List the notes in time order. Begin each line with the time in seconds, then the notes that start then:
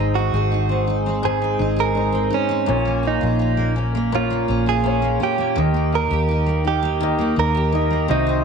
Already playing: G#1 G#2 D#3 G#3 C4 D#4 C5
0.15 D#4 F#4
0.33 G#1 G#4
0.52 D#4
0.69 C4
0.87 D#4
1.06 C4
1.22 G#2 G#3 D#4 G#4 C5
1.42 C4
1.59 G#1 D#4
1.76 G#4 A#4
1.95 G#3 D#4 C5
2.12 C4
2.30 C#4 D#4
2.49 C4
2.66 A#1 A#2 A#3 F4 C#5
2.85 A#3
3.03 C#4
3.07 D#4
3.21 A#1 F4
3.39 C#4
3.57 A#3
3.76 C#4
3.95 A#3
4.12 A#2 A#3 F4 C#5
4.30 A#3
4.48 A#1 C#4
4.66 F4 G#4
4.84 A#3 C#4 F4 C#5
5.02 A#3
5.20 C#4 G4
5.38 A#3
5.55 D#2 D#3 A#3 G4 D#5
5.74 A#3
5.92 D#4 A#4
6.10 D#2 G4
6.29 D#4
6.46 A#3
6.65 D#4 G4
6.82 A#3
7.00 D#3 A#3 G4 D#5
7.18 A#3
7.36 D#2 D#4 A#4
7.55 G4
7.72 A#3 D#4 G4 D#5
7.90 A#3
8.08 C2 C3 C4 D#4 F#4 D#5
8.27 C4